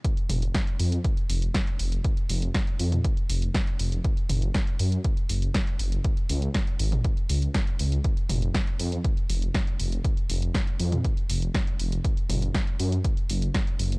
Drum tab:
HH |xxoxxxoxxxoxxxox|xxoxxxoxxxoxxxox|xxoxxxoxxxoxxxox|xxoxxxoxxxoxxxox|
SD |----o-------o---|----o-------o---|----o-------o---|----o-------o---|
T2 |--o-------------|-------o--------|--o-------------|-------o--------|
BD |o---o---o---o---|o---o---o---o---|o---o---o---o---|o---o---o---o---|

HH |xxoxxxoxxxoxxxox|xxoxxxoxxxoxxxox|xxoxxxoxxxoxxxox|
SD |----o-------o---|----o-------o---|----o-------o---|
T2 |--o-------------|-------o--------|--o-------------|
BD |o---o---o---o---|o---o---o---o---|o---o---o---o---|